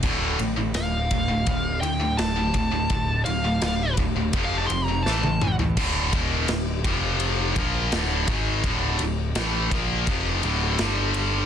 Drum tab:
CC |x---------------|----------------|x---------------|----------------|
RD |--x-x-x-x-x-x-x-|x-x-x-x-x-x-----|--x-x-x-x-x-x-x-|x-x-x-x-x-x-x-x-|
SD |----o-------o---|----o-------o---|----o-------o---|----o-------o---|
T1 |----------------|-------------o--|----------------|----------------|
T2 |----------------|--------------o-|----------------|----------------|
FT |----------------|---------------o|----------------|----------------|
BD |o-----o-o-----o-|o-----o-o-------|o-o---o---o---o-|o-----o-o-------|